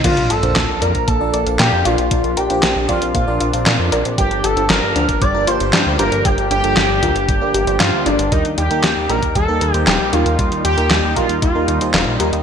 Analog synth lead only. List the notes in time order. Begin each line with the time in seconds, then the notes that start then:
0.04 F4
0.30 A4
0.82 A#4
1.08 A4
1.59 G4
1.85 F4
2.37 G4
2.89 F4
3.15 F4
4.18 G4
4.44 A4
4.70 A#4
5.22 D5
5.47 C5
5.99 A#4
6.25 G4
6.51 G4
7.80 F4
8.06 D4
8.32 D#4
8.58 G4
9.10 A#4
9.35 A4
9.73 G4
9.87 G4
10.13 F4
10.65 G4
11.17 F4
11.42 F4